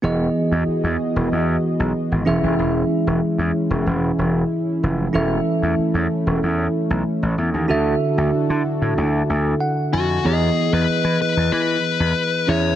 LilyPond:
<<
  \new Staff \with { instrumentName = "Lead electric guitar" } { \time 4/4 \key e \major \tempo 4 = 94 r1 | r1 | r1 | r2. r8 fis'8 |
gis'8. b'8. b'8 b'4. cis''8 | }
  \new Staff \with { instrumentName = "Tine electric piano" } { \time 4/4 \key e \major <b e' gis' dis''>2.~ <b e' gis' dis''>8 <cis' e' gis' e''>8~ | <cis' e' gis' e''>2.~ <cis' e' gis' e''>8 r8 | <cis' e' a' e''>1 | <d' fis' a' e''>1 |
<b e' gis' cis'' dis''>2.~ <b e' gis' cis'' dis''>8 <cis' e' gis' e''>8 | }
  \new Staff \with { instrumentName = "Tine electric piano" } { \clef bass \time 4/4 \key e \major e4. r2 e8~ | e4 r2. | e4. r2 r8 | d4. r4. fis''8 gis''8 |
e4. r2 e8 | }
  \new Staff \with { instrumentName = "Analog synth pad" } { \time 4/4 \key e \major << { <e b gis'>2.~ <e b gis'>8 e'8~ | e'1~ | e'1 | <d d' a'>1 |
r1 | } \\ { <fis' dis''>2.~ <fis' dis''>8 <gis cis'>8~ | <gis cis'>1 | <a cis'>1 | <e' fis'>1 |
r1 | } >> }
  \new Staff \with { instrumentName = "Slap bass" } { \clef bass \time 4/4 \key e \major e,,8 r16 e,16 r16 e,16 r16 e,,16 e,8 r16 b,,16 r16 gis,,16 e,,16 f,,16 | e,,8 r16 e,,16 r16 e,16 r16 e,,16 e,,8 e,,8 r8 f,,8 | e,,8 r16 e,16 r16 e,16 r16 e,,16 e,8 r16 b,,16 r16 a,,16 e,16 dis,16 | d,8 r16 d,16 r16 d16 r16 a,16 d,8 d,8 r8 f,8 |
e,8 r16 e,16 r16 e16 r16 e,16 e8 r16 e,16 r8 e,8 | }
>>